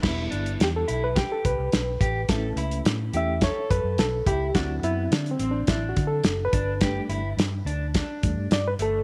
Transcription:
<<
  \new Staff \with { instrumentName = "Clean electric guitar" } { \time 4/4 \key e \minor \tempo 4 = 106 e'8 d'8 r8 e'8 g'4 r8 g'8 | a'8 e'8 r8 g'8 a'4 r8 e'8 | d'8 b8 r8 c'8 d'4 r8 d'8 | g'8 e'8 r8 d'8 d'4 r8 a8 | }
  \new Staff \with { instrumentName = "Reed electric piano" } { \time 4/4 \key e \minor r4 g'16 a'8 b'16 g'16 a'16 b'4.~ | b'4 r8 e''8 cis''8 b'8 a'8 g'8 | fis'8 e'8 \tuplet 3/2 { d'8 c'8 d'8 e'8 fis'8 a'8~ a'8 b'4~ } | b'16 r2 r8. d''16 b'16 a'8 | }
  \new Staff \with { instrumentName = "Reed electric piano" } { \time 4/4 \key e \minor <g b e'>4. r2 r8 | <a cis' e'>4. <a cis' e'>8 r2 | <fis c' e'>2.~ <fis c' e'>8 r8 | <g a d'>8 r2 <g a d'>8 r4 | }
  \new Staff \with { instrumentName = "Fingered electric bass" } { \clef bass \time 4/4 \key e \minor e,,8 g,,8 e,8 b,,8. r16 c,16 c,16 b,,8 a,,8 | a,,8 cis,8 a,8 e,8. r16 fis,16 fis,16 b,,8 cis,8 | d,8 fis,8 d8 a,,8 a,,8 d8 fis,,8 g,,8~ | g,,8 g,,8 g,8 d,8. r16 e,16 g,16 g,8 g,,8 | }
  \new DrumStaff \with { instrumentName = "Drums" } \drummode { \time 4/4 <cymc bd sn>8 hh16 hh16 <hh sn>8 hh8 <hh bd sn>8 <hh bd>8 <hh sn>8 <hh bd>8 | <hh bd sn>8 hh16 hh16 <hh sn>8 hh8 <hh bd sn>8 <hh bd>8 <hh sn>8 <hh bd>8 | <hh bd sn>8 hh8 <hh sn>16 hh16 hh8 <hh bd sn>8 <hh bd>8 <hh sn>8 <hh bd>8 | <hh bd sn>8 hh8 <hh sn>8 hh8 <hh bd sn>8 <hh bd>8 <hh sn>8 hh8 | }
>>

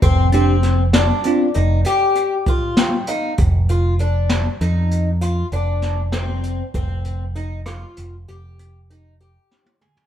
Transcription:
<<
  \new Staff \with { instrumentName = "Tine electric piano" } { \time 11/8 \key ees \major \tempo 4 = 98 r8 <c' d' g'>8 r4 <c' d' f'>8 r2 g''8 f''8 | r1 r4. | r1 r4. | }
  \new Staff \with { instrumentName = "Twelve-string acoustic guitar" } { \time 11/8 \key ees \major c'8 c'4 d'4 ees'8 g'4 f'4 ees'8 | r8 f'8 d'4 ees'4 f'8 d'4 c'4 | c'4 ees'8 f'4 g'4 ees'8 g'4 aes'8 | }
  \new Staff \with { instrumentName = "Picked electric bass" } { \clef bass \time 11/8 \key ees \major f,,2 r8 f,,8 r2 r8 | f,,2 f,4. f,,2 | f,,2 f,,8 f,,2 r4 | }
  \new DrumStaff \with { instrumentName = "Drums" } \drummode { \time 11/8 <hh bd>8 hh8 <hh sn>8 <hh sn>8 hh8 hh8 hh8 hh8 <hh bd>8 <hh sn>8 hh8 | <hh bd>8 hh8 hh8 <hh sn>8 hh8 hh8 hh8 hh8 <hh sn>8 <hh sn>8 hh8 | <hh bd>8 hh8 hh8 <hh ss>8 hh8 hh8 hh8 hh8 hh8 sn16 tommh16 toml16 tomfh16 | }
>>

